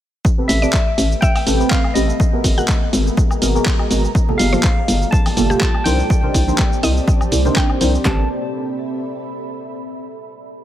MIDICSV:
0, 0, Header, 1, 8, 480
1, 0, Start_track
1, 0, Tempo, 487805
1, 243, Time_signature, 4, 2, 24, 8
1, 10472, End_track
2, 0, Start_track
2, 0, Title_t, "Tine electric piano"
2, 0, Program_c, 0, 4
2, 471, Note_on_c, 0, 76, 96
2, 1188, Note_on_c, 0, 79, 112
2, 1219, Note_off_c, 0, 76, 0
2, 1669, Note_on_c, 0, 77, 99
2, 1691, Note_off_c, 0, 79, 0
2, 1899, Note_off_c, 0, 77, 0
2, 1909, Note_on_c, 0, 75, 85
2, 2837, Note_off_c, 0, 75, 0
2, 4307, Note_on_c, 0, 77, 93
2, 4996, Note_off_c, 0, 77, 0
2, 5028, Note_on_c, 0, 81, 108
2, 5497, Note_off_c, 0, 81, 0
2, 5508, Note_on_c, 0, 81, 109
2, 5749, Note_on_c, 0, 79, 99
2, 5763, Note_off_c, 0, 81, 0
2, 6677, Note_off_c, 0, 79, 0
2, 7924, Note_on_c, 0, 81, 87
2, 8147, Note_off_c, 0, 81, 0
2, 10472, End_track
3, 0, Start_track
3, 0, Title_t, "Synth pluck"
3, 0, Program_c, 1, 84
3, 612, Note_on_c, 1, 74, 97
3, 755, Note_off_c, 1, 74, 0
3, 1204, Note_on_c, 1, 76, 96
3, 1287, Note_off_c, 1, 76, 0
3, 1333, Note_on_c, 1, 76, 78
3, 1404, Note_off_c, 1, 76, 0
3, 2536, Note_on_c, 1, 78, 96
3, 2885, Note_off_c, 1, 78, 0
3, 4454, Note_on_c, 1, 72, 97
3, 4596, Note_off_c, 1, 72, 0
3, 5412, Note_on_c, 1, 67, 92
3, 5555, Note_off_c, 1, 67, 0
3, 6724, Note_on_c, 1, 75, 97
3, 6881, Note_off_c, 1, 75, 0
3, 7445, Note_on_c, 1, 79, 96
3, 7814, Note_off_c, 1, 79, 0
3, 10472, End_track
4, 0, Start_track
4, 0, Title_t, "Ambient pad"
4, 0, Program_c, 2, 92
4, 240, Note_on_c, 2, 69, 92
4, 598, Note_on_c, 2, 76, 91
4, 2162, Note_off_c, 2, 69, 0
4, 2162, Note_on_c, 2, 68, 90
4, 2163, Note_off_c, 2, 76, 0
4, 2304, Note_on_c, 2, 82, 69
4, 2539, Note_on_c, 2, 75, 80
4, 4083, Note_off_c, 2, 68, 0
4, 4083, Note_off_c, 2, 75, 0
4, 4083, Note_off_c, 2, 82, 0
4, 4085, Note_on_c, 2, 67, 84
4, 4178, Note_on_c, 2, 74, 84
4, 4839, Note_on_c, 2, 81, 94
4, 5764, Note_on_c, 2, 60, 88
4, 6635, Note_off_c, 2, 81, 0
4, 7922, Note_off_c, 2, 74, 0
4, 7924, Note_off_c, 2, 60, 0
4, 7924, Note_off_c, 2, 67, 0
4, 7925, Note_on_c, 2, 69, 79
4, 8003, Note_on_c, 2, 76, 80
4, 8075, Note_on_c, 2, 83, 78
4, 9804, Note_off_c, 2, 83, 0
4, 9805, Note_off_c, 2, 69, 0
4, 9805, Note_off_c, 2, 76, 0
4, 10472, End_track
5, 0, Start_track
5, 0, Title_t, "Synth stab"
5, 0, Program_c, 3, 62
5, 372, Note_on_c, 3, 60, 78
5, 373, Note_on_c, 3, 67, 72
5, 375, Note_on_c, 3, 69, 67
5, 375, Note_on_c, 3, 71, 86
5, 573, Note_off_c, 3, 60, 0
5, 574, Note_off_c, 3, 67, 0
5, 575, Note_off_c, 3, 69, 0
5, 575, Note_off_c, 3, 71, 0
5, 613, Note_on_c, 3, 60, 91
5, 614, Note_on_c, 3, 67, 82
5, 615, Note_on_c, 3, 69, 83
5, 616, Note_on_c, 3, 71, 95
5, 731, Note_off_c, 3, 60, 0
5, 732, Note_off_c, 3, 67, 0
5, 732, Note_off_c, 3, 69, 0
5, 733, Note_off_c, 3, 71, 0
5, 1441, Note_on_c, 3, 60, 86
5, 1443, Note_on_c, 3, 67, 81
5, 1444, Note_on_c, 3, 69, 79
5, 1445, Note_on_c, 3, 71, 96
5, 1553, Note_off_c, 3, 60, 0
5, 1554, Note_off_c, 3, 67, 0
5, 1554, Note_off_c, 3, 69, 0
5, 1555, Note_off_c, 3, 71, 0
5, 1572, Note_on_c, 3, 60, 98
5, 1573, Note_on_c, 3, 67, 86
5, 1574, Note_on_c, 3, 69, 89
5, 1576, Note_on_c, 3, 71, 107
5, 1774, Note_off_c, 3, 60, 0
5, 1774, Note_off_c, 3, 67, 0
5, 1775, Note_off_c, 3, 69, 0
5, 1776, Note_off_c, 3, 71, 0
5, 1920, Note_on_c, 3, 60, 81
5, 1922, Note_on_c, 3, 67, 71
5, 1922, Note_on_c, 3, 69, 73
5, 1924, Note_on_c, 3, 71, 85
5, 2059, Note_off_c, 3, 60, 0
5, 2059, Note_off_c, 3, 67, 0
5, 2060, Note_off_c, 3, 69, 0
5, 2060, Note_off_c, 3, 71, 0
5, 2291, Note_on_c, 3, 59, 77
5, 2292, Note_on_c, 3, 66, 69
5, 2293, Note_on_c, 3, 68, 73
5, 2295, Note_on_c, 3, 70, 81
5, 2493, Note_off_c, 3, 59, 0
5, 2494, Note_off_c, 3, 66, 0
5, 2494, Note_off_c, 3, 68, 0
5, 2495, Note_off_c, 3, 70, 0
5, 2532, Note_on_c, 3, 59, 90
5, 2533, Note_on_c, 3, 66, 77
5, 2534, Note_on_c, 3, 68, 81
5, 2535, Note_on_c, 3, 70, 95
5, 2651, Note_off_c, 3, 59, 0
5, 2651, Note_off_c, 3, 66, 0
5, 2652, Note_off_c, 3, 68, 0
5, 2653, Note_off_c, 3, 70, 0
5, 3362, Note_on_c, 3, 59, 90
5, 3363, Note_on_c, 3, 66, 78
5, 3364, Note_on_c, 3, 68, 80
5, 3365, Note_on_c, 3, 70, 99
5, 3473, Note_off_c, 3, 59, 0
5, 3474, Note_off_c, 3, 66, 0
5, 3475, Note_off_c, 3, 68, 0
5, 3475, Note_off_c, 3, 70, 0
5, 3493, Note_on_c, 3, 59, 100
5, 3494, Note_on_c, 3, 66, 90
5, 3495, Note_on_c, 3, 68, 88
5, 3496, Note_on_c, 3, 70, 107
5, 3694, Note_off_c, 3, 59, 0
5, 3695, Note_off_c, 3, 66, 0
5, 3695, Note_off_c, 3, 68, 0
5, 3696, Note_off_c, 3, 70, 0
5, 3842, Note_on_c, 3, 59, 81
5, 3843, Note_on_c, 3, 66, 72
5, 3844, Note_on_c, 3, 68, 71
5, 3845, Note_on_c, 3, 70, 85
5, 3979, Note_off_c, 3, 59, 0
5, 3980, Note_off_c, 3, 66, 0
5, 3980, Note_off_c, 3, 68, 0
5, 3981, Note_off_c, 3, 70, 0
5, 4212, Note_on_c, 3, 58, 79
5, 4213, Note_on_c, 3, 65, 72
5, 4214, Note_on_c, 3, 67, 70
5, 4215, Note_on_c, 3, 69, 87
5, 4414, Note_off_c, 3, 58, 0
5, 4414, Note_off_c, 3, 65, 0
5, 4415, Note_off_c, 3, 67, 0
5, 4415, Note_off_c, 3, 69, 0
5, 4452, Note_on_c, 3, 58, 91
5, 4453, Note_on_c, 3, 65, 80
5, 4454, Note_on_c, 3, 67, 81
5, 4455, Note_on_c, 3, 69, 97
5, 4571, Note_off_c, 3, 58, 0
5, 4571, Note_off_c, 3, 65, 0
5, 4572, Note_off_c, 3, 67, 0
5, 4572, Note_off_c, 3, 69, 0
5, 5281, Note_on_c, 3, 58, 91
5, 5283, Note_on_c, 3, 65, 80
5, 5284, Note_on_c, 3, 67, 79
5, 5285, Note_on_c, 3, 69, 99
5, 5393, Note_off_c, 3, 58, 0
5, 5394, Note_off_c, 3, 65, 0
5, 5394, Note_off_c, 3, 67, 0
5, 5395, Note_off_c, 3, 69, 0
5, 5412, Note_on_c, 3, 58, 101
5, 5413, Note_on_c, 3, 65, 89
5, 5414, Note_on_c, 3, 67, 87
5, 5415, Note_on_c, 3, 69, 108
5, 5614, Note_off_c, 3, 58, 0
5, 5614, Note_off_c, 3, 65, 0
5, 5615, Note_off_c, 3, 67, 0
5, 5615, Note_off_c, 3, 69, 0
5, 5761, Note_on_c, 3, 62, 77
5, 5762, Note_on_c, 3, 63, 71
5, 5763, Note_on_c, 3, 70, 74
5, 5764, Note_on_c, 3, 72, 86
5, 5899, Note_off_c, 3, 62, 0
5, 5900, Note_off_c, 3, 63, 0
5, 5900, Note_off_c, 3, 70, 0
5, 5901, Note_off_c, 3, 72, 0
5, 6131, Note_on_c, 3, 62, 77
5, 6132, Note_on_c, 3, 63, 73
5, 6133, Note_on_c, 3, 70, 74
5, 6134, Note_on_c, 3, 72, 88
5, 6333, Note_off_c, 3, 62, 0
5, 6334, Note_off_c, 3, 63, 0
5, 6334, Note_off_c, 3, 70, 0
5, 6335, Note_off_c, 3, 72, 0
5, 6371, Note_on_c, 3, 62, 92
5, 6372, Note_on_c, 3, 63, 82
5, 6373, Note_on_c, 3, 70, 82
5, 6374, Note_on_c, 3, 72, 101
5, 6490, Note_off_c, 3, 62, 0
5, 6491, Note_off_c, 3, 63, 0
5, 6491, Note_off_c, 3, 70, 0
5, 6492, Note_off_c, 3, 72, 0
5, 7332, Note_on_c, 3, 62, 100
5, 7333, Note_on_c, 3, 63, 92
5, 7334, Note_on_c, 3, 70, 89
5, 7336, Note_on_c, 3, 72, 110
5, 7657, Note_off_c, 3, 62, 0
5, 7657, Note_off_c, 3, 63, 0
5, 7657, Note_off_c, 3, 70, 0
5, 7658, Note_off_c, 3, 72, 0
5, 7682, Note_on_c, 3, 62, 81
5, 7683, Note_on_c, 3, 63, 70
5, 7684, Note_on_c, 3, 70, 72
5, 7685, Note_on_c, 3, 72, 86
5, 7820, Note_off_c, 3, 62, 0
5, 7820, Note_off_c, 3, 63, 0
5, 7821, Note_off_c, 3, 70, 0
5, 7821, Note_off_c, 3, 72, 0
5, 7918, Note_on_c, 3, 60, 88
5, 7921, Note_on_c, 3, 67, 83
5, 7925, Note_on_c, 3, 69, 85
5, 7928, Note_on_c, 3, 71, 100
5, 8103, Note_off_c, 3, 60, 0
5, 8105, Note_off_c, 3, 67, 0
5, 8106, Note_off_c, 3, 69, 0
5, 8108, Note_off_c, 3, 71, 0
5, 10472, End_track
6, 0, Start_track
6, 0, Title_t, "Ambient pad"
6, 0, Program_c, 4, 92
6, 242, Note_on_c, 4, 60, 81
6, 242, Note_on_c, 4, 67, 76
6, 243, Note_on_c, 4, 57, 85
6, 243, Note_on_c, 4, 71, 93
6, 2144, Note_off_c, 4, 57, 0
6, 2144, Note_off_c, 4, 60, 0
6, 2144, Note_off_c, 4, 67, 0
6, 2144, Note_off_c, 4, 71, 0
6, 2160, Note_on_c, 4, 66, 78
6, 2161, Note_on_c, 4, 59, 80
6, 2162, Note_on_c, 4, 56, 82
6, 2162, Note_on_c, 4, 70, 98
6, 4063, Note_off_c, 4, 56, 0
6, 4063, Note_off_c, 4, 59, 0
6, 4063, Note_off_c, 4, 66, 0
6, 4063, Note_off_c, 4, 70, 0
6, 4084, Note_on_c, 4, 58, 80
6, 4085, Note_on_c, 4, 55, 83
6, 4085, Note_on_c, 4, 69, 93
6, 4086, Note_on_c, 4, 65, 80
6, 5747, Note_off_c, 4, 55, 0
6, 5748, Note_off_c, 4, 65, 0
6, 5748, Note_off_c, 4, 69, 0
6, 5761, Note_on_c, 4, 60, 75
6, 5762, Note_on_c, 4, 72, 92
6, 5762, Note_on_c, 4, 74, 81
6, 7885, Note_off_c, 4, 58, 0
6, 7901, Note_off_c, 4, 60, 0
6, 7901, Note_off_c, 4, 72, 0
6, 7901, Note_off_c, 4, 74, 0
6, 10472, End_track
7, 0, Start_track
7, 0, Title_t, "FM bass"
7, 0, Program_c, 5, 39
7, 483, Note_on_c, 5, 33, 96
7, 647, Note_off_c, 5, 33, 0
7, 962, Note_on_c, 5, 33, 105
7, 1127, Note_off_c, 5, 33, 0
7, 1442, Note_on_c, 5, 33, 93
7, 1607, Note_off_c, 5, 33, 0
7, 1922, Note_on_c, 5, 33, 90
7, 2087, Note_off_c, 5, 33, 0
7, 2403, Note_on_c, 5, 32, 97
7, 2567, Note_off_c, 5, 32, 0
7, 2883, Note_on_c, 5, 32, 107
7, 3047, Note_off_c, 5, 32, 0
7, 3364, Note_on_c, 5, 32, 94
7, 3528, Note_off_c, 5, 32, 0
7, 3843, Note_on_c, 5, 32, 89
7, 4007, Note_off_c, 5, 32, 0
7, 4323, Note_on_c, 5, 31, 105
7, 4488, Note_off_c, 5, 31, 0
7, 4804, Note_on_c, 5, 31, 109
7, 4968, Note_off_c, 5, 31, 0
7, 5283, Note_on_c, 5, 31, 99
7, 5448, Note_off_c, 5, 31, 0
7, 5763, Note_on_c, 5, 36, 88
7, 5928, Note_off_c, 5, 36, 0
7, 6242, Note_on_c, 5, 36, 100
7, 6407, Note_off_c, 5, 36, 0
7, 6724, Note_on_c, 5, 36, 107
7, 6888, Note_off_c, 5, 36, 0
7, 7204, Note_on_c, 5, 36, 97
7, 7368, Note_off_c, 5, 36, 0
7, 7684, Note_on_c, 5, 36, 87
7, 7848, Note_off_c, 5, 36, 0
7, 7923, Note_on_c, 5, 33, 100
7, 8147, Note_off_c, 5, 33, 0
7, 10472, End_track
8, 0, Start_track
8, 0, Title_t, "Drums"
8, 243, Note_on_c, 9, 36, 115
8, 251, Note_on_c, 9, 82, 45
8, 342, Note_off_c, 9, 36, 0
8, 349, Note_off_c, 9, 82, 0
8, 484, Note_on_c, 9, 46, 110
8, 491, Note_on_c, 9, 82, 87
8, 582, Note_off_c, 9, 46, 0
8, 590, Note_off_c, 9, 82, 0
8, 621, Note_on_c, 9, 82, 36
8, 717, Note_on_c, 9, 39, 127
8, 720, Note_off_c, 9, 82, 0
8, 723, Note_on_c, 9, 36, 109
8, 731, Note_on_c, 9, 82, 49
8, 816, Note_off_c, 9, 39, 0
8, 822, Note_off_c, 9, 36, 0
8, 829, Note_off_c, 9, 82, 0
8, 964, Note_on_c, 9, 46, 109
8, 972, Note_on_c, 9, 82, 78
8, 1062, Note_off_c, 9, 46, 0
8, 1070, Note_off_c, 9, 82, 0
8, 1101, Note_on_c, 9, 82, 34
8, 1199, Note_off_c, 9, 82, 0
8, 1203, Note_on_c, 9, 36, 124
8, 1211, Note_on_c, 9, 82, 50
8, 1301, Note_off_c, 9, 36, 0
8, 1309, Note_off_c, 9, 82, 0
8, 1334, Note_on_c, 9, 46, 62
8, 1334, Note_on_c, 9, 76, 62
8, 1341, Note_on_c, 9, 82, 31
8, 1432, Note_off_c, 9, 46, 0
8, 1432, Note_off_c, 9, 76, 0
8, 1440, Note_off_c, 9, 82, 0
8, 1443, Note_on_c, 9, 46, 112
8, 1451, Note_on_c, 9, 82, 80
8, 1541, Note_off_c, 9, 46, 0
8, 1549, Note_off_c, 9, 82, 0
8, 1581, Note_on_c, 9, 82, 36
8, 1678, Note_on_c, 9, 39, 125
8, 1679, Note_off_c, 9, 82, 0
8, 1683, Note_on_c, 9, 36, 127
8, 1691, Note_on_c, 9, 82, 46
8, 1777, Note_off_c, 9, 39, 0
8, 1781, Note_off_c, 9, 36, 0
8, 1790, Note_off_c, 9, 82, 0
8, 1814, Note_on_c, 9, 76, 60
8, 1912, Note_off_c, 9, 76, 0
8, 1923, Note_on_c, 9, 46, 104
8, 1931, Note_on_c, 9, 82, 82
8, 2022, Note_off_c, 9, 46, 0
8, 2029, Note_off_c, 9, 82, 0
8, 2061, Note_on_c, 9, 82, 36
8, 2159, Note_off_c, 9, 82, 0
8, 2163, Note_on_c, 9, 36, 122
8, 2171, Note_on_c, 9, 82, 47
8, 2261, Note_off_c, 9, 36, 0
8, 2269, Note_off_c, 9, 82, 0
8, 2403, Note_on_c, 9, 36, 64
8, 2403, Note_on_c, 9, 46, 115
8, 2411, Note_on_c, 9, 82, 82
8, 2501, Note_off_c, 9, 36, 0
8, 2501, Note_off_c, 9, 46, 0
8, 2509, Note_off_c, 9, 82, 0
8, 2541, Note_on_c, 9, 82, 35
8, 2638, Note_on_c, 9, 39, 126
8, 2639, Note_off_c, 9, 82, 0
8, 2643, Note_on_c, 9, 36, 123
8, 2651, Note_on_c, 9, 82, 49
8, 2736, Note_off_c, 9, 39, 0
8, 2741, Note_off_c, 9, 36, 0
8, 2750, Note_off_c, 9, 82, 0
8, 2883, Note_on_c, 9, 46, 104
8, 2891, Note_on_c, 9, 82, 80
8, 2982, Note_off_c, 9, 46, 0
8, 2989, Note_off_c, 9, 82, 0
8, 3021, Note_on_c, 9, 82, 33
8, 3119, Note_off_c, 9, 82, 0
8, 3123, Note_on_c, 9, 36, 124
8, 3131, Note_on_c, 9, 82, 46
8, 3221, Note_off_c, 9, 36, 0
8, 3229, Note_off_c, 9, 82, 0
8, 3253, Note_on_c, 9, 76, 60
8, 3261, Note_on_c, 9, 82, 32
8, 3352, Note_off_c, 9, 76, 0
8, 3359, Note_off_c, 9, 82, 0
8, 3363, Note_on_c, 9, 46, 116
8, 3371, Note_on_c, 9, 82, 83
8, 3462, Note_off_c, 9, 46, 0
8, 3469, Note_off_c, 9, 82, 0
8, 3501, Note_on_c, 9, 82, 34
8, 3598, Note_on_c, 9, 39, 126
8, 3600, Note_off_c, 9, 82, 0
8, 3603, Note_on_c, 9, 36, 127
8, 3611, Note_on_c, 9, 82, 43
8, 3696, Note_off_c, 9, 39, 0
8, 3701, Note_off_c, 9, 36, 0
8, 3709, Note_off_c, 9, 82, 0
8, 3733, Note_on_c, 9, 76, 60
8, 3831, Note_off_c, 9, 76, 0
8, 3843, Note_on_c, 9, 46, 110
8, 3851, Note_on_c, 9, 82, 80
8, 3942, Note_off_c, 9, 46, 0
8, 3949, Note_off_c, 9, 82, 0
8, 3982, Note_on_c, 9, 82, 35
8, 4080, Note_off_c, 9, 82, 0
8, 4083, Note_on_c, 9, 36, 123
8, 4091, Note_on_c, 9, 82, 43
8, 4182, Note_off_c, 9, 36, 0
8, 4189, Note_off_c, 9, 82, 0
8, 4219, Note_on_c, 9, 64, 98
8, 4318, Note_off_c, 9, 64, 0
8, 4324, Note_on_c, 9, 46, 116
8, 4332, Note_on_c, 9, 82, 80
8, 4422, Note_off_c, 9, 46, 0
8, 4430, Note_off_c, 9, 82, 0
8, 4453, Note_on_c, 9, 63, 97
8, 4461, Note_on_c, 9, 82, 34
8, 4552, Note_off_c, 9, 63, 0
8, 4558, Note_on_c, 9, 39, 127
8, 4560, Note_off_c, 9, 82, 0
8, 4563, Note_on_c, 9, 36, 127
8, 4571, Note_on_c, 9, 82, 44
8, 4656, Note_off_c, 9, 39, 0
8, 4662, Note_off_c, 9, 36, 0
8, 4669, Note_off_c, 9, 82, 0
8, 4804, Note_on_c, 9, 46, 113
8, 4812, Note_on_c, 9, 82, 77
8, 4902, Note_off_c, 9, 46, 0
8, 4910, Note_off_c, 9, 82, 0
8, 4942, Note_on_c, 9, 82, 34
8, 5040, Note_off_c, 9, 82, 0
8, 5043, Note_on_c, 9, 36, 127
8, 5052, Note_on_c, 9, 82, 43
8, 5142, Note_off_c, 9, 36, 0
8, 5151, Note_off_c, 9, 82, 0
8, 5171, Note_on_c, 9, 63, 73
8, 5174, Note_on_c, 9, 46, 68
8, 5174, Note_on_c, 9, 76, 62
8, 5182, Note_on_c, 9, 82, 32
8, 5270, Note_off_c, 9, 63, 0
8, 5273, Note_off_c, 9, 46, 0
8, 5273, Note_off_c, 9, 76, 0
8, 5279, Note_on_c, 9, 64, 83
8, 5280, Note_off_c, 9, 82, 0
8, 5284, Note_on_c, 9, 46, 111
8, 5291, Note_on_c, 9, 82, 77
8, 5378, Note_off_c, 9, 64, 0
8, 5382, Note_off_c, 9, 46, 0
8, 5390, Note_off_c, 9, 82, 0
8, 5408, Note_on_c, 9, 64, 86
8, 5421, Note_on_c, 9, 82, 35
8, 5506, Note_off_c, 9, 64, 0
8, 5517, Note_on_c, 9, 39, 120
8, 5520, Note_off_c, 9, 82, 0
8, 5523, Note_on_c, 9, 36, 127
8, 5531, Note_on_c, 9, 82, 42
8, 5616, Note_off_c, 9, 39, 0
8, 5622, Note_off_c, 9, 36, 0
8, 5629, Note_off_c, 9, 82, 0
8, 5652, Note_on_c, 9, 76, 62
8, 5751, Note_off_c, 9, 76, 0
8, 5759, Note_on_c, 9, 63, 103
8, 5762, Note_on_c, 9, 46, 115
8, 5770, Note_on_c, 9, 82, 83
8, 5857, Note_off_c, 9, 63, 0
8, 5861, Note_off_c, 9, 46, 0
8, 5868, Note_off_c, 9, 82, 0
8, 5900, Note_on_c, 9, 82, 33
8, 5999, Note_off_c, 9, 82, 0
8, 6003, Note_on_c, 9, 36, 127
8, 6011, Note_on_c, 9, 82, 44
8, 6102, Note_off_c, 9, 36, 0
8, 6109, Note_off_c, 9, 82, 0
8, 6127, Note_on_c, 9, 64, 90
8, 6225, Note_off_c, 9, 64, 0
8, 6243, Note_on_c, 9, 36, 64
8, 6243, Note_on_c, 9, 46, 111
8, 6250, Note_on_c, 9, 82, 84
8, 6341, Note_off_c, 9, 36, 0
8, 6341, Note_off_c, 9, 46, 0
8, 6349, Note_off_c, 9, 82, 0
8, 6378, Note_on_c, 9, 63, 102
8, 6380, Note_on_c, 9, 82, 32
8, 6476, Note_off_c, 9, 63, 0
8, 6477, Note_on_c, 9, 39, 127
8, 6479, Note_off_c, 9, 82, 0
8, 6483, Note_on_c, 9, 36, 120
8, 6490, Note_on_c, 9, 82, 44
8, 6576, Note_off_c, 9, 39, 0
8, 6581, Note_off_c, 9, 36, 0
8, 6589, Note_off_c, 9, 82, 0
8, 6619, Note_on_c, 9, 82, 29
8, 6718, Note_off_c, 9, 82, 0
8, 6722, Note_on_c, 9, 46, 111
8, 6730, Note_on_c, 9, 82, 75
8, 6820, Note_off_c, 9, 46, 0
8, 6828, Note_off_c, 9, 82, 0
8, 6860, Note_on_c, 9, 82, 35
8, 6959, Note_off_c, 9, 82, 0
8, 6963, Note_on_c, 9, 36, 127
8, 6970, Note_on_c, 9, 82, 45
8, 7061, Note_off_c, 9, 36, 0
8, 7069, Note_off_c, 9, 82, 0
8, 7093, Note_on_c, 9, 63, 64
8, 7093, Note_on_c, 9, 76, 66
8, 7100, Note_on_c, 9, 82, 30
8, 7191, Note_off_c, 9, 63, 0
8, 7191, Note_off_c, 9, 76, 0
8, 7197, Note_on_c, 9, 64, 85
8, 7199, Note_off_c, 9, 82, 0
8, 7202, Note_on_c, 9, 46, 114
8, 7210, Note_on_c, 9, 82, 77
8, 7295, Note_off_c, 9, 64, 0
8, 7300, Note_off_c, 9, 46, 0
8, 7308, Note_off_c, 9, 82, 0
8, 7332, Note_on_c, 9, 64, 104
8, 7340, Note_on_c, 9, 82, 34
8, 7431, Note_off_c, 9, 64, 0
8, 7438, Note_on_c, 9, 39, 117
8, 7439, Note_off_c, 9, 82, 0
8, 7443, Note_on_c, 9, 36, 127
8, 7451, Note_on_c, 9, 82, 42
8, 7536, Note_off_c, 9, 39, 0
8, 7542, Note_off_c, 9, 36, 0
8, 7550, Note_off_c, 9, 82, 0
8, 7573, Note_on_c, 9, 76, 62
8, 7671, Note_off_c, 9, 76, 0
8, 7683, Note_on_c, 9, 46, 113
8, 7684, Note_on_c, 9, 63, 95
8, 7691, Note_on_c, 9, 82, 77
8, 7782, Note_off_c, 9, 46, 0
8, 7782, Note_off_c, 9, 63, 0
8, 7789, Note_off_c, 9, 82, 0
8, 7821, Note_on_c, 9, 82, 32
8, 7920, Note_off_c, 9, 82, 0
8, 7923, Note_on_c, 9, 36, 102
8, 7923, Note_on_c, 9, 38, 104
8, 7923, Note_on_c, 9, 39, 91
8, 8022, Note_off_c, 9, 36, 0
8, 8022, Note_off_c, 9, 38, 0
8, 8022, Note_off_c, 9, 39, 0
8, 10472, End_track
0, 0, End_of_file